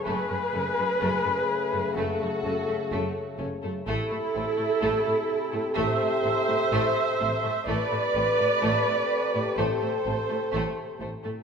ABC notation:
X:1
M:4/4
L:1/16
Q:1/4=63
K:A
V:1 name="Viola section"
B8 A6 z2 | A8 e8 | d8 =c6 z2 |]
V:2 name="Violin section"
G8 F6 z2 | E8 =c8 | B8 A6 z2 |]
V:3 name="Violin section"
A, A, [A,C] A, A, A, z A, A, A, [A,C] A, A, z [A,C] A, | A, A, [A,=C] A, A, A, z A, A, A, [A,C] A, A, z [A,C] A, | A, A, [A,=C] A, A, A, z A, A, A, [A,C] A, A, z [A,C] A, |]
V:4 name="French horn section" clef=bass
[C,A,]16 | [=C,A]16 | [=C,A]16 |]
V:5 name="Cello section" clef=bass
F,, F,, F,, F,, F,, F,, z F,, F,, F,, F,, F,, F,, z F,, F,, | A,, A,, A,, A,, A,, A,, z A,, A,, A,, A,, A,, A,, z A,, A,, | A,, A,, A,, A,, A,, A,, z A,, A,, A,, A,, A,, A,, z A,, A,, |]
V:6 name="Double bass section" clef=bass
F,,, z F,,, z F,,, z3 F,,, z F,,, z F,,, z F,,, z | A,,, z A,,, z A,,, z3 A,,, z A,,, z A,,, z A,,, z | A,,, z A,,, z A,,, z3 A,,, z A,,, z A,,, z A,,, z |]